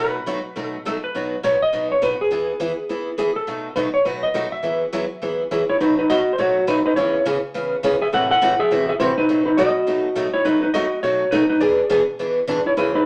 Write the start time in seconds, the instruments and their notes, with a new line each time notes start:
Already playing: steel-string acoustic guitar B2
0.00 steel-string acoustic guitar F#3 A3 D#4 F#4, electric slide guitar B4
0.26 steel-string acoustic guitar B2 F#3 A3 D#4 F#4
0.56 steel-string acoustic guitar B2 F#3 A3 D#4 F#4
0.63 electric slide guitar A4
0.85 steel-string acoustic guitar B2 F#3 A3 D#4 F#4, electric slide guitar A4
1.04 electric slide guitar B4
1.15 steel-string acoustic guitar B2 F#3 B3 D#4 F#4
1.43 steel-string acoustic guitar B2 F#3 B3 D#4 F#4, electric slide guitar C#5
1.62 electric slide guitar D#5
1.73 steel-string acoustic guitar B2 F#3 B3 D#4 F#4
1.92 electric slide guitar C#5
2.02 steel-string acoustic guitar B2 F#3 B3 D#4 F#4, electric slide guitar B4
2.21 electric slide guitar G#4
2.31 steel-string acoustic guitar E3 B3 E4 G#4
2.60 steel-string acoustic guitar E3 B3 E4 G#4
2.89 steel-string acoustic guitar E3 B3 E4 G#4
3.18 steel-string acoustic guitar E3 B3 E4 G#4, electric slide guitar G#4
3.36 electric slide guitar A4
3.47 steel-string acoustic guitar B2 F#3 A3 D#4 F#4
3.76 steel-string acoustic guitar B2 F#3 A3 D#4 F#4, electric slide guitar B4
3.94 electric slide guitar C#5
4.05 steel-string acoustic guitar B2 F#3 A3 D#4 F#4, electric slide guitar B4
4.23 electric slide guitar D#5
4.34 steel-string acoustic guitar B2 F#3 A3 D#4 F#4
4.52 electric slide guitar E5
4.63 steel-string acoustic guitar E3 F#3 B3 E4 G#4
4.93 steel-string acoustic guitar E3 F#3 B3 E4 G#4
5.22 steel-string acoustic guitar E3 F#3 B3 E4 G#4
5.51 steel-string acoustic guitar E3 F#3 B3 E4 G#4
5.70 electric slide guitar E4 C#5
5.81 steel-string acoustic guitar B2 F#3 A3 D#4 F#4, electric slide guitar D#4 B4
5.99 electric slide guitar D#4 B4
6.10 steel-string acoustic guitar B2 F#3 A3 D#4 F#4, electric slide guitar F#4 D#5
6.33 electric slide guitar C5
6.38 steel-string acoustic guitar B2 F#3 A3 D#4 F#4, electric slide guitar F#4 C#5
6.67 steel-string acoustic guitar B2 F#3 A3 D#4 F#4, electric slide guitar D#4 B4
6.86 electric slide guitar D#4 B4
6.96 steel-string acoustic guitar C#3 E3 B3 C#4 G#4, electric slide guitar E4 C#5
7.25 steel-string acoustic guitar C#3 E3 B3 C#4 G#4
7.54 steel-string acoustic guitar C#3 E3 B3 C#4 G#4
7.83 steel-string acoustic guitar C#3 E3 B3 C#4 G#4
8.01 electric slide guitar G#4 E5
8.12 steel-string acoustic guitar A2 C3 E3 A3 E4 F#4, electric slide guitar A4 F#5
8.31 electric slide guitar A4 F#5
8.42 steel-string acoustic guitar A2 C3 E3 A3 E4 F#4
8.59 electric slide guitar G#4 E5
8.71 steel-string acoustic guitar A2 C3 E3 A3 E4 F#4
8.89 electric slide guitar G#4 E5
9.00 steel-string acoustic guitar A2 C3 E3 A3 E4 F#4, electric slide guitar E4 C5
9.18 electric slide guitar D#4 B4
9.29 steel-string acoustic guitar B2 F#3 A3 D#4 F#4
9.46 electric slide guitar D#4 B4
9.57 steel-string acoustic guitar B2 F#3 A3 D#4 F#4, electric slide guitar F#4 D#5
9.87 steel-string acoustic guitar B2 F#3 A3 D#4 F#4
10.15 steel-string acoustic guitar B2 F#3 A3 D#4 F#4
10.34 electric slide guitar E4 C#5
10.45 steel-string acoustic guitar B2 F#3 A3 D#4 F#4, electric slide guitar D#4 B4
10.63 electric slide guitar D#4 B4
10.74 steel-string acoustic guitar B2 F#3 A3 D#4 F#4, electric slide guitar F#4 D#5
11.03 steel-string acoustic guitar B2 F#3 A3 D#4 F#4, electric slide guitar F#4 C#5
11.31 steel-string acoustic guitar B2 F#3 A3 D#4 F#4, electric slide guitar D#4 B4
11.49 electric slide guitar D#4 B4
11.60 steel-string acoustic guitar B2 E3 B3 D4 G#4, electric slide guitar G#4 D5
11.90 steel-string acoustic guitar B2 E3 B3 D4 G#4
12.19 steel-string acoustic guitar B2 E3 B3 D4 G#4
12.47 steel-string acoustic guitar B2 E3 B3 D4 G#4
12.66 electric slide guitar E4 C#5
12.77 steel-string acoustic guitar A2 C#3 E3 A3 C#4 G#4, electric slide guitar E4 B4
12.95 electric slide guitar D#4 B4